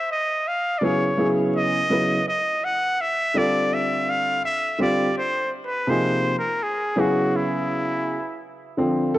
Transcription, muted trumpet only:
Already playing: E5
0.12 D#5
0.48 F5
0.78 D5
0.84 C#5
1.56 D#5
2.29 D#5
2.65 F#5
3.01 E5
3.38 D5
3.74 E5
4.10 F5
4.45 E5
4.82 D5
5.18 C5
5.66 B4
5.90 C5
6.39 A#4
6.63 G#4
7.00 F#4
7.36 E4

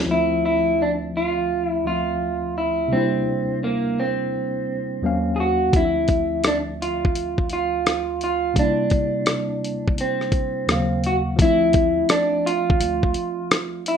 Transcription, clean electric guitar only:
0.11 E4
0.46 E4
0.82 D4
1.17 F4
1.67 E4
1.87 F4
2.58 E4
2.93 C4
3.64 A#3
4.00 C4
5.36 G#4
5.40 F#4
5.76 E4
6.47 D4
6.82 F4
7.53 F4
8.24 F4
8.59 D4
10.01 C4
11.06 F#4
11.42 E4
12.11 D4
12.46 F4
13.88 E4

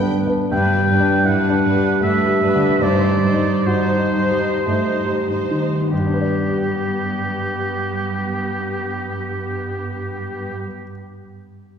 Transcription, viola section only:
Already playing: B3 B4
0.52 D4 B4
0.89 D4 B4
1.27 D4 B4
1.65 D4 B4
2.03 D4 B4
2.43 D4 B4
2.83 D#4 C5
3.24 D#4 C5
3.67 D#4 C5
4.15 D#4 C5
4.68 D#4 C5
5.29 D#4 C5
5.91 B3 G4

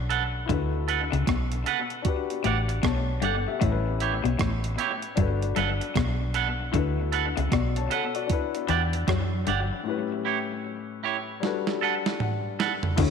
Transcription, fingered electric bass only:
Already playing: B1
0.49 D2
1.13 C#2
1.28 B1
2.45 A1
2.83 B1
3.22 G1
3.62 A1
4.25 B1
4.40 A1
5.18 G1
5.57 G1
5.96 B1
6.74 D2
7.38 C#2
7.52 B1
8.69 E2
9.08 F#2
9.48 G1
12.98 D2

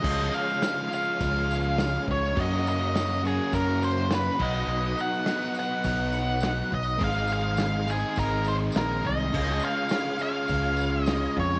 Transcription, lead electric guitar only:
Already playing: D#5
0.34 F5
0.94 F5
2.11 C#5
2.40 D#5
2.69 D#5
3.27 G#4
3.55 A#4
3.85 C5
4.15 B4
4.42 D#5
5.01 F#5
5.59 F#5
6.74 D#5
7.04 F5
7.33 F5
7.91 G#4
8.19 A#4
8.48 C5
8.77 A#4
9.07 D#5
9.65 F5
10.23 F5
11.05 D#5
11.40 C#5

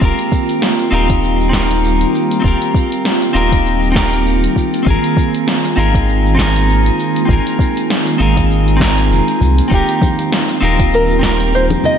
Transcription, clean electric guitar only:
Already playing: C4
0.01 F4 G4 A#4
0.91 C4 D#4 F4 G4 A#4
1.49 C4 D#4 F4
1.55 G4 A#4
2.40 C4 D#4 F4
2.46 G4 A#4
3.33 C4 D#4 F4 G4 A#4
3.92 C4 D#4 F4
3.97 G4 A#4
4.83 C4 F4
4.88 G#4 A#4
5.76 C4 D#4 F4 G#4 A#4
6.35 C4 D#4 F4
6.40 G#4 A#4
7.25 C4 D#4 F4
7.31 G#4 A#4
8.18 C4 D#4 F4 G#4 A#4
8.77 C4 D#4 F4
8.82 G#4 A#4
9.68 C4 D#4 F4
9.74 G4 A#4
10.61 C4 D#4 F4 G4 A#4
11.19 C4 D#4 F4
11.25 G4 A#4

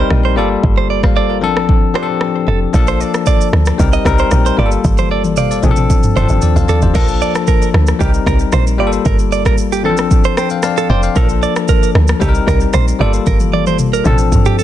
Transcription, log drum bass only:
0.11 A#1
0.37 G1
0.63 G1
1.42 A1
2.48 F1
2.74 A#1
3.53 D2
3.79 C2
4.05 C2
4.32 A#1
4.58 G1
4.84 G1
5.63 A1
6.16 F1
6.30 G1
6.56 A1
6.82 F1
6.95 A#1
7.74 D2
8.01 C2
8.26 C2
8.53 A#1
8.79 G1
9.06 G1
9.85 A1
10.90 F1
11.16 A#1
11.95 D2
12.21 C2
12.47 C2
12.74 A#1
13.00 G1
13.27 G1
14.06 A1

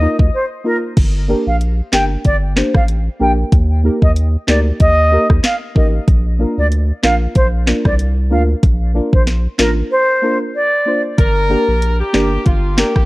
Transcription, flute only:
Already playing: D#5
0.34 C5
0.65 A#4
1.47 F5
1.93 G5
2.25 D5
2.75 F5
3.20 G5
4.02 D#5
4.48 D5
4.80 D#5
5.44 F5
5.76 D#5
6.58 D5
7.03 F5
7.35 C5
7.85 D5
8.31 F5
9.13 C5
9.59 A#4
9.91 C5
10.55 D5

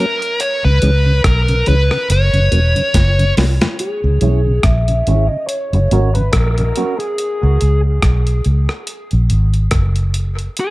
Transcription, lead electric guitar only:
0.00 A#4
0.41 C#5
0.64 B4
1.26 A#4
1.68 B4
2.12 C#5
3.80 G#4
4.64 E5
5.29 D#5
5.47 C#5
6.15 B4
6.33 A#4
6.99 G#4
10.60 G#4

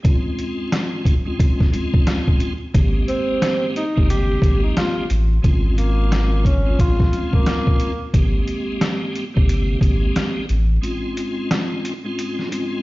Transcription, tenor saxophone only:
3.08 C4
3.77 D#4
4.10 G4
4.63 D#4
4.78 F4
5.78 A#3
6.46 C#4
6.80 F4
7.34 A#3

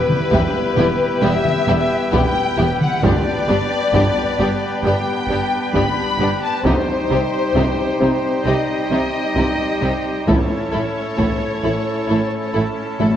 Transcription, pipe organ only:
Already playing: E4 G4 B4 G5
3.03 D4 G4 B4 G5
6.65 D#4 G4 C5 G5
10.28 C#4 E4 A4 A5

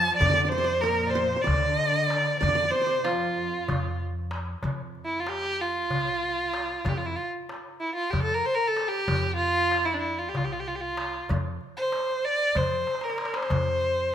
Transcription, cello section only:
Already playing: F3
0.21 D3
0.51 C3
0.75 C3
0.82 A#2
1.46 D3
2.40 D3
2.70 C3
3.04 F2

